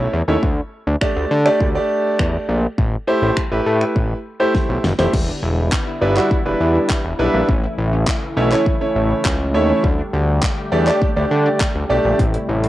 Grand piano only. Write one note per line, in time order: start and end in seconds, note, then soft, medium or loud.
0.00 0.11 A3 medium
0.00 0.12 C#4 medium
0.00 0.12 E4 medium
0.00 0.12 C#5 loud
0.28 0.43 A3 medium
0.28 0.43 C#4 medium
0.28 0.43 E4 medium
0.28 0.43 C#5 medium
1.01 1.33 A3 medium
1.01 1.33 D4 medium
1.01 1.33 G4 medium
1.01 1.33 D5 loud
1.45 1.67 A3 loud
1.45 1.67 D4 medium
1.45 1.67 G4 medium
1.45 1.67 D5 loud
1.75 2.60 A3 medium
1.75 2.60 D4 medium
1.75 2.60 G4 medium
1.75 2.60 D5 loud
3.07 3.39 A3 medium
3.07 3.39 E4 medium
3.07 3.39 G4 medium
3.07 3.39 C5 loud
3.51 4.15 A3 medium
3.51 4.15 E4 medium
3.51 4.15 G4 medium
3.51 4.15 B4 medium
4.40 4.82 A3 medium
4.40 4.82 E4 medium
4.40 4.82 G4 medium
4.40 4.82 C5 loud
4.98 5.13 A3 medium
4.98 5.13 E4 medium
4.98 5.13 G4 medium
4.98 5.14 C5 medium
6.01 6.12 G3 medium
6.01 6.12 D4 medium
6.01 6.12 E4 medium
6.01 6.12 B4 loud
6.16 6.37 G3 medium
6.16 6.38 D4 medium
6.16 6.38 E4 medium
6.16 6.38 F#4 medium
6.45 6.98 G3 medium
6.45 6.99 D4 medium
6.45 6.99 E4 medium
6.45 6.99 B4 medium
7.19 7.48 G3 medium
7.19 7.49 D4 medium
7.19 7.49 E4 medium
7.19 7.49 B4 loud
8.37 8.47 A3 medium
8.37 8.47 C#4 medium
8.37 8.48 E4 medium
8.37 8.48 C#5 loud
8.51 8.73 A3 medium
8.51 8.73 C#4 medium
8.51 8.73 E4 medium
8.51 8.73 C#5 loud
8.81 9.34 A3 medium
8.81 9.34 C#4 medium
8.81 9.34 E4 medium
8.81 9.34 C#5 medium
9.54 9.84 A3 loud
9.54 9.84 C#4 medium
9.54 9.84 E4 medium
9.54 9.84 C#5 loud
10.72 10.83 A3 medium
10.72 10.83 D4 medium
10.72 10.83 G4 medium
10.72 10.83 D5 loud
10.87 11.08 A3 medium
10.87 11.08 D4 medium
10.87 11.08 G4 medium
10.87 11.08 D5 loud
11.16 11.69 A3 medium
11.16 11.69 D4 medium
11.16 11.69 G4 medium
11.16 11.69 D5 medium
11.90 12.19 A3 loud
11.90 12.19 D4 medium
11.90 12.19 G4 medium
11.90 12.19 D5 loud